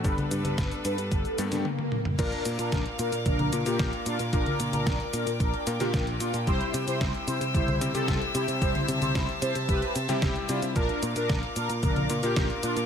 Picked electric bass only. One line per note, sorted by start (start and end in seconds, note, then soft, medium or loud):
0.04 0.16 G1 loud
0.31 0.43 G2 loud
0.45 0.57 G2 medium
0.58 0.70 G1 loud
0.85 0.97 G2 loud
0.98 1.10 G2 medium
1.12 1.24 G1 medium
1.38 1.50 G2 medium
1.52 1.64 G2 loud
2.19 2.31 A#1 loud
2.46 2.57 A#2 loud
2.59 2.71 A#2 medium
2.72 2.84 A#1 loud
2.99 3.11 A#2 loud
3.13 3.24 A#2 medium
3.26 3.50 A#1 loud
3.53 3.65 A#2 medium
3.66 3.78 A#2 medium
3.79 3.91 A#1 medium
4.06 4.18 A#2 medium
4.20 4.32 A#2 medium
4.33 4.45 A#1 loud
4.60 4.72 A#2 loud
4.73 4.85 A#2 loud
4.87 4.98 A#1 loud
5.13 5.25 A#2 loud
5.27 5.39 A#2 medium
5.40 5.52 A#1 medium
5.67 5.79 A#2 loud
5.80 5.92 A#2 medium
5.94 6.18 A#1 loud
6.20 6.32 A#2 medium
6.34 6.46 A#2 loud
6.47 6.59 C2 loud
6.74 6.86 C3 loud
6.87 6.99 C3 medium
7.01 7.13 C2 loud
7.27 7.39 C3 loud
7.41 7.53 C3 medium
7.54 7.78 C2 loud
7.81 7.93 C3 medium
7.94 8.06 C3 medium
8.08 8.20 C2 medium
8.35 8.47 C3 medium
8.48 8.60 C3 loud
8.62 8.74 C2 loud
8.88 9.00 C3 loud
9.02 9.14 C3 medium
9.15 9.27 C2 loud
9.42 9.54 C3 loud
9.56 9.67 C3 medium
9.69 9.81 C2 loud
9.96 10.08 C3 loud
10.09 10.21 C3 loud
10.22 10.34 C2 medium
10.49 10.61 C3 loud
10.63 10.74 C3 medium
10.76 10.88 A#1 loud
11.03 11.15 A#2 loud
11.16 11.28 A#2 loud
11.30 11.41 A#1 loud
11.56 11.68 A#2 loud
11.70 11.82 A#2 medium
11.83 12.07 A#1 loud
12.10 12.22 A#2 medium
12.23 12.35 A#2 medium
12.37 12.49 A#1 medium
12.63 12.75 A#2 loud
12.77 12.86 A#2 loud